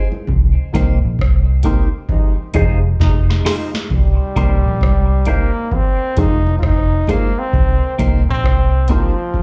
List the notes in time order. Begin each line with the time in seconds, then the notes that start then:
0.12 high conga
0.27 C2, kick, low conga
0.73 C2 A#3 C4 D#4 G4 A#4 C5, kick, closed hi-hat, low conga
1.05 A#1
1.19 C2, kick, cross-stick
1.63 A#3 C4 D#4 G4 A#4 C5, kick, closed hi-hat, high conga
2.09 C3 G#3 D#4, kick, low conga
2.54 F1 C3 G#3 D#4 F4 G#4 C5, kick, closed hi-hat, low conga
3.00 F1 C3 G#3 D#4, kick, snare
3.30 muted clean electric guitar stroke, snare
3.45 G#3 D#4 F4 G#4 C5, snare, open hi-hat
3.74 snare, high conga
3.90 C2, kick, low conga
3.95 G3
4.35 C2 A#3 C4 D#4 G4 A#4 C5, kick, closed hi-hat, low conga
4.66 A#1
4.81 C2, kick, cross-stick, high conga
5.25 A#3 C4 D#4 G4 A#4 C5, kick, closed hi-hat, high conga
5.30 A#3
5.71 C4, kick, low conga
6.17 F1 G#3 D#4 F4 G#4 C5, kick, closed hi-hat, low conga
6.47 high conga
6.59 F1 F4, kick
6.63 D#4, cross-stick, high conga
7.07 G#3 A#3 D#4 F4 G#4 C5, kick, closed hi-hat, high conga
7.39 C4
7.53 C2, kick, low conga
7.98 C2 A#3 C4 D#4 G4 A#4 C5, kick, closed hi-hat, low conga
8.29 A#1 C4
8.44 C2, kick, cross-stick, high conga
8.88 F3 A#3 C4 D#4 G4 A#4 C5, kick, closed hi-hat, high conga
9.34 kick, low conga